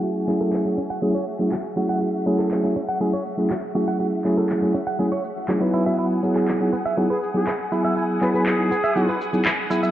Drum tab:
SH |x-xx--xxx-xx--xx|x-xxx-xxx-xxx-xx|x-xx--xxx-xxx-xx|x-xxx-xxx-xxx-xx|
CP |--x-x-------x---|---xx-------x---|--x-x-------x---|---xx-------x---|

SH |x-xxx-xxx-xxx-xx|
CP |--x-x-------x---|